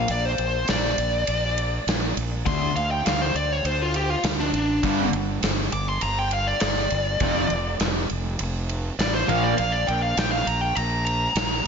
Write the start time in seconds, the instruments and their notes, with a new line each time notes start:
0.08 fingered electric bass A#1, lead electric guitar D5, ride
0.25 lead electric guitar C5
0.38 fingered electric bass A#1, ride
0.68 fingered electric bass A#1, lead electric guitar D5, snare, ride
0.98 fingered electric bass A#1, ride
1.27 fingered electric bass A#1, ride
1.58 ride
1.87 fingered electric bass A#1, snare, ride
2.17 fingered electric bass A#1, ride
2.45 fingered electric bass D2, overdriven electric guitar D3 A3 D4, lead electric guitar C6, kick, ride
2.76 fingered electric bass D2, lead electric guitar F5, ride
2.91 lead electric guitar G5
3.05 fingered electric bass D2, lead electric guitar F5, snare, ride
3.22 lead electric guitar C5
3.35 fingered electric bass D2, lead electric guitar D5, ride
3.52 lead electric guitar C#5
3.64 fingered electric bass D2, lead electric guitar C5, ride
3.82 lead electric guitar F4
3.94 lead electric guitar G4, ride
4.10 lead electric guitar F4
4.23 fingered electric bass D2, snare, ride
4.40 lead electric guitar D4
4.53 fingered electric bass A1, lead electric guitar D4, ride
4.83 fingered electric bass G1, overdriven electric guitar G2 D3 G3, kick, ride
5.13 fingered electric bass G1, ride
5.42 fingered electric bass G1, snare, ride
5.72 fingered electric bass G1, lead electric guitar D6, ride
5.89 lead electric guitar C6
6.01 fingered electric bass G1, lead electric guitar A#5, ride
6.19 lead electric guitar G5
6.31 lead electric guitar F5, ride
6.47 lead electric guitar D5
6.60 fingered electric bass G1, lead electric guitar D5, snare, ride
6.90 fingered electric bass G1, ride
7.20 fingered electric bass F1, overdriven electric guitar F2 C3 F3, kick, ride
7.50 fingered electric bass F1, ride
7.80 fingered electric bass F1, snare, ride
8.09 fingered electric bass F1, ride
8.39 fingered electric bass F1, ride
8.69 ride
8.98 fingered electric bass A1, lead electric guitar D5, snare, ride
9.15 lead electric guitar C5
9.28 fingered electric bass A#1, overdriven electric guitar A#2 F3 A#3, lead electric guitar F5, ride
9.43 lead electric guitar D5
9.57 fingered electric bass A#1, lead electric guitar F5, ride
9.72 lead electric guitar D5
9.87 fingered electric bass A#1, lead electric guitar G5, ride
10.02 lead electric guitar F5
10.17 fingered electric bass A#1, lead electric guitar G5, snare, ride
10.32 lead electric guitar F5
10.46 fingered electric bass A#1, lead electric guitar A#5, ride
10.61 lead electric guitar G5
10.75 fingered electric bass A#1, lead electric guitar A#5, ride
11.05 lead electric guitar A#5, ride
11.35 fingered electric bass A#1, snare, ride